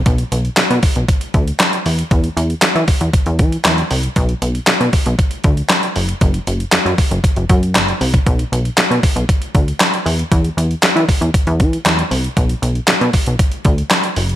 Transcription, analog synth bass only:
\new Staff \with { instrumentName = "Analog synth bass" } { \clef bass \time 4/4 \key b \dorian \tempo 4 = 117 b,,8 b,,8 b,16 b,16 r16 b,,16 r8 d,8 r8 e,8 | e,8 e,8 e16 e16 r16 e,16 r16 e,16 e8 e,8 c,8 | b,,8 b,,8 b,16 b,16 r16 b,,16 r8 d,8 r8 fis,,8 | fis,,8 fis,,8 fis,16 fis,16 r16 fis,,16 r16 fis,,16 fis,8 fis,,8 bis,,8 |
b,,8 b,,8 b,16 b,16 r16 b,,16 r8 d,8 r8 e,8 | e,8 e,8 e16 e16 r16 e,16 r16 e,16 e8 e,8 c,8 | b,,8 b,,8 b,16 b,16 r16 b,,16 r8 d,8 r8 fis,,8 | }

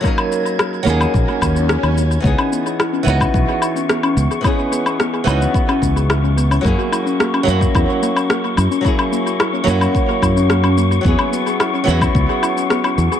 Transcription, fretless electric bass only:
\new Staff \with { instrumentName = "Fretless electric bass" } { \clef bass \time 4/4 \key cis \dorian \tempo 4 = 109 r4. dis,16 r16 ais,,16 r16 dis,8 r16 dis,8 r16 | cis,16 r4 r16 cis,16 r16 b,,16 r4 r16 cis,16 r16 | r4. cis,16 r8. cis,4~ cis,16 r16 | fis,16 r4 r16 fis,16 r16 e,16 r4 r16 fis,16 r16 |
r4. fis,16 r8. fis,4~ fis,16 r16 | e,16 r4 r16 e,16 r16 cis,16 r4 r16 e,16 r16 | }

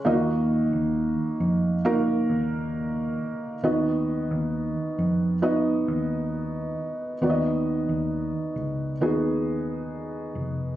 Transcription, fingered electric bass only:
\new Staff \with { instrumentName = "Fingered electric bass" } { \clef bass \time 4/4 \key ces \lydian \tempo 4 = 67 ees,8. ees,8 r16 f,4 ees,4 r8 | dis,8. dis,8 r16 f,4 dis,4 r8 | dis,8. dis,8 r16 des,8 dis,4. f,,8 | }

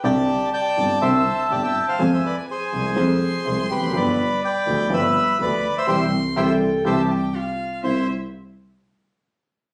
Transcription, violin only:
\new Staff \with { instrumentName = "Violin" } { \time 4/4 \key c \major \tempo 4 = 123 a''1 | aes''4 aes''4 c'''2 | b''4 b''2. | c'''4 g''4 a''8 g''8 f''4 |
e''8 r2. r8 | }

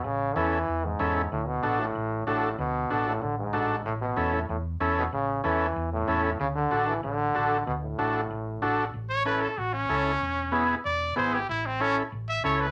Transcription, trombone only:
\new Staff \with { instrumentName = "Trombone" } { \clef bass \time 4/4 \key a \major \tempo 4 = 189 cis4 e4. gis,4. | a,8 b,4 a,4. a,4 | b,4. a,8 d8 gis,4. | a,8 b,4 a,8 a,8 r4 b,8 |
cis4 e4. a,4. | cis8 d4 e8 d2 | b,8 a,2. r8 | r1 |
r1 | r1 | }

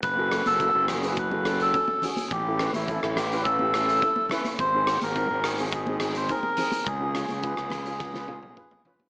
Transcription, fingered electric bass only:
\new Staff \with { instrumentName = "Fingered electric bass" } { \clef bass \time 4/4 \key a \major \tempo 4 = 105 fis,,8. fis,,8 fis,,2 r8. | a,,8. a,,8 a,,2 r8. | gis,,8. gis,,8 gis,,2 r8. | cis,8. cis,8 cis,2 r8. | }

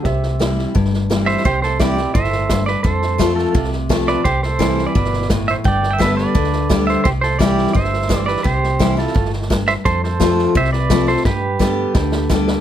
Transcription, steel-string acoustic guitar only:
\new Staff \with { instrumentName = "Steel-string acoustic guitar" } { \clef bass \time 4/4 \key c \major \tempo 4 = 171 << { r4 <e g c' e'>4 r4 <e g c' e'>4 | r4 <e g c' e'>8 c'8 r2 | r4 <f a c' f'>4 r4 <f a c' f'>4 | r4 <e g c' e'>4 r2 |
r4 <d g b g'>4 r4 <d g b g'>4 | r4 <e g c' e'>4 r4 <e g c' e'>4 | r4 <e g c' e'>8 <c' e'>8 r2 | r4 <f a c' f'>4 r4 <f a c' f'>8 <c' f'>8 |
r4 <d g b g'>4 r4 <d g b g'>4 | } \\ { c2 g,2 | c2 a,4 g,4 | f,2 c2 | c2 b,4 a,4 |
g,2 d2 | c2 g,2 | c2 a,4 g,4 | f,2 c2 |
g,2 d2 | } >> }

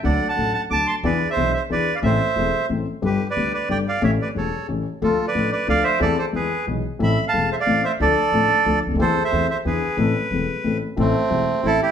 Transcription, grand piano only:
\new Staff \with { instrumentName = "Grand piano" } { \clef bass \time 3/4 \key a \minor \tempo 4 = 181 <d, d fis a d' a'>8 r8 <a,, a, fis a d' a'>8 r8 <d, d fis a d' a'>8 r8 | <e, e b d' gis'>8 r8 <b,, b, e b d' gis'>8 r8 <e, e b d' gis'>8 r8 | <a,, a, e a c' a'>8 r8 <e,, e, e a c' a'>8 r8 <a,, a, e a c' a'>8 r8 | <g,, g, d g b g'>8 r8 <d, d g b g'>8 r8 <g,, g, d g b g'>8 r8 |
<a,, a, e a cis' g'>8 r8 <e,, e, e a cis' g'>8 r8 <a,, a, e a cis' g'>8 r8 | <d, d f a d' a'>8 r8 <a,, a, f a d' a'>8 r8 <d, d f a d' a'>8 r8 | <e, e a c' a'>8 r8 <e, e gis b gis'>8 r8 <b,, b, e gis b gis'>8 r8 | <a,, a, e a c' a'>8 r8 <e,, e, e a c' a'>8 r8 <a,, a, e a c' a'>8 r8 |
<d, d f a d' a'>8 r8 <a,, a, f a d' a'>8 r8 <d, d f a d' a'>8 r32 cis,32 d,32 dis,32 | <e, e a c' a'>8 r8 <e, e a c' a'>8 r8 <e, e b d' gis'>8 r8 | <a,, a, e a c' a'>8 r8 <e,, e, e a c' a'>8 r8 <a,, a, e a c' a'>8 r8 | <a,, a, e a c' a'>8 r8 <e,, e, e a c' a'>8 r8 <a,, a, e a c' a'>8 r8 | }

